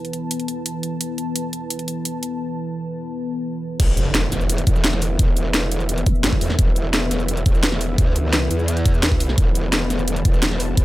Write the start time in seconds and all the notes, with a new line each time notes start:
Already playing: E3 B3 B4 A5
0.05 closed hi-hat
0.13 closed hi-hat
0.31 closed hi-hat
0.40 closed hi-hat
0.48 closed hi-hat
0.66 closed hi-hat
0.83 closed hi-hat
1.01 closed hi-hat
1.18 closed hi-hat
1.36 closed hi-hat
1.53 closed hi-hat
1.70 closed hi-hat
1.79 closed hi-hat
1.88 closed hi-hat
2.05 closed hi-hat
2.23 closed hi-hat
3.80 E1 E3 B3 B4 E5, kick, closed hi-hat, crash, impact
3.97 closed hi-hat, shaker
4.15 snare, closed hi-hat
4.32 snare, closed hi-hat, shaker
4.41 shaker
4.49 closed hi-hat
4.58 closed hi-hat
4.67 E1, kick, closed hi-hat, shaker
4.76 shaker
4.84 snare, closed hi-hat
4.93 snare
5.02 open hi-hat, shaker
5.19 E1, kick, closed hi-hat
5.37 closed hi-hat, shaker
5.54 snare, closed hi-hat
5.72 closed hi-hat, shaker
5.80 shaker
5.89 closed hi-hat
5.98 closed hi-hat
6.06 kick, closed hi-hat, zap, shaker
6.15 shaker
6.24 G1, snare, closed hi-hat
6.33 kick
6.41 E2, open hi-hat, shaker
6.50 snare
6.59 E1, kick, closed hi-hat
6.76 closed hi-hat, shaker
6.94 snare, closed hi-hat
7.11 snare, closed hi-hat, shaker
7.20 shaker
7.28 closed hi-hat
7.37 closed hi-hat
7.46 E1, kick, closed hi-hat, shaker
7.55 shaker
7.63 snare, closed hi-hat
7.72 snare
7.81 open hi-hat, shaker
7.98 D2, kick, closed hi-hat
8.16 closed hi-hat, shaker
8.33 snare, closed hi-hat
8.51 E2, closed hi-hat, shaker
8.59 shaker
8.68 closed hi-hat
8.77 closed hi-hat
8.86 kick, closed hi-hat, shaker
8.94 shaker
9.03 snare, closed hi-hat
9.12 kick
9.20 open hi-hat, shaker
9.29 snare
9.38 E1 A5, kick, closed hi-hat
9.55 closed hi-hat, shaker
9.73 snare, closed hi-hat
9.90 snare, closed hi-hat, shaker
9.99 shaker
10.08 closed hi-hat
10.16 closed hi-hat
10.25 E1, kick, closed hi-hat, shaker
10.34 shaker
10.43 snare, closed hi-hat
10.51 snare
10.60 open hi-hat, shaker
10.77 E1, kick, closed hi-hat